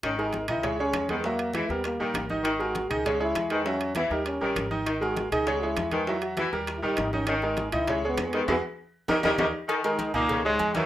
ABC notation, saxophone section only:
X:1
M:4/4
L:1/8
Q:1/4=199
K:G#m
V:1 name="Saxophone section" clef=bass
D,4 C,3 D,- | D,2 E,2 z D,3 | D,4 C,3 D,- | D,2 E,2 z D,3 |
D,4 C,3 D,- | D,2 E,2 z D,3 | D,4 C,3 D, | [G,,B,,E,] z3 [C,D,=G,] [C,D,G,] [C,D,G,] z |
D,4 C,3 D, |]